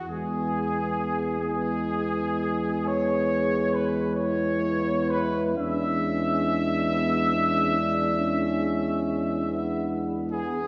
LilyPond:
<<
  \new Staff \with { instrumentName = "Trumpet section" } { \time 12/8 \key e \major \tempo 4. = 46 gis'4. gis'4. cis''4 b'8 cis''4 b'8 | e''1~ e''4 r8 gis'8 | }
  \new Staff \with { instrumentName = "French horn section" } { \time 12/8 \key e \major r2. gis'4. e'4. | cis'4. b8 cis'8 d'8 cis'4. b4. | }
  \new Staff \with { instrumentName = "Euphonium" } { \time 12/8 \key e \major b4. b2.~ b8 b4 | d'1~ d'4. r8 | }
  \new Staff \with { instrumentName = "Trombone" } { \clef bass \time 12/8 \key e \major gis4. gis1~ gis8 | gis1~ gis4. r8 | }
  \new Staff \with { instrumentName = "Tuba" } { \clef bass \time 12/8 \key e \major e,1. | e,1~ e,4. r8 | }
>>